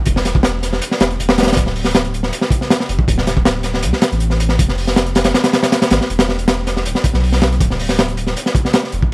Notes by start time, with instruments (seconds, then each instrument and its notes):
0.05 sub bass E1, kick, closed hi-hat
0.16 snare
0.25 snare, closed hi-hat
0.35 kick
0.43 snare, closed hi-hat
0.63 snare, closed hi-hat
0.73 snare
0.82 closed hi-hat
0.91 snare
1.00 sub bass E1, snare, closed hi-hat
1.10 closed hi-hat
1.19 sub bass E1, closed hi-hat
1.29 snare
1.38 snare, closed hi-hat
1.43 snare, closed hi-hat
1.47 snare, closed hi-hat
1.52 snare, closed hi-hat
1.57 sub bass D1, kick, closed hi-hat
1.66 snare
1.76 open hi-hat
1.85 snare
1.95 snare, closed hi-hat
2.04 closed hi-hat
2.14 closed hi-hat
2.23 snare
2.33 closed hi-hat
2.41 snare
2.50 kick, closed hi-hat
2.61 snare
2.70 snare, closed hi-hat
2.80 snare
2.89 sub bass F1, closed hi-hat
2.99 kick
3.08 sub bass D1, kick, closed hi-hat
3.18 snare
3.27 snare, closed hi-hat
3.37 kick
3.45 snare, closed hi-hat
3.63 snare, closed hi-hat
3.74 snare
3.83 sub bass C2, closed hi-hat
3.93 snare
4.02 snare, closed hi-hat
4.12 sub bass A1, closed hi-hat
4.20 closed hi-hat
4.30 snare
4.40 closed hi-hat
4.49 snare
4.59 sub bass F1, kick, closed hi-hat
4.68 snare
4.78 open hi-hat
4.87 snare
4.96 snare, closed hi-hat
5.06 closed hi-hat
5.15 snare, closed hi-hat
5.24 snare, closed hi-hat
5.34 snare, closed hi-hat
5.44 snare, closed hi-hat
5.53 snare, closed hi-hat
5.63 snare, closed hi-hat
5.72 snare, closed hi-hat
5.82 snare, closed hi-hat
5.90 sub bass G#1, snare, closed hi-hat
6.01 snare
6.10 sub bass E1, closed hi-hat
6.19 snare, closed hi-hat
6.29 snare
6.39 closed hi-hat
6.48 snare, closed hi-hat
6.67 snare, closed hi-hat
6.76 snare
6.86 sub bass D1, closed hi-hat
6.95 snare
7.04 kick, closed hi-hat
7.14 sub bass B1, snare
7.24 open hi-hat
7.32 snare
7.42 snare, closed hi-hat
7.52 closed hi-hat
7.60 sub bass D1, kick, closed hi-hat
7.70 snare
7.79 open hi-hat
7.89 snare
7.99 snare, closed hi-hat
8.08 closed hi-hat
8.17 closed hi-hat
8.27 snare
8.36 closed hi-hat
8.46 snare
8.55 kick, closed hi-hat
8.65 snare
8.73 snare, closed hi-hat
8.83 snare
8.92 sub bass F1, closed hi-hat
9.02 kick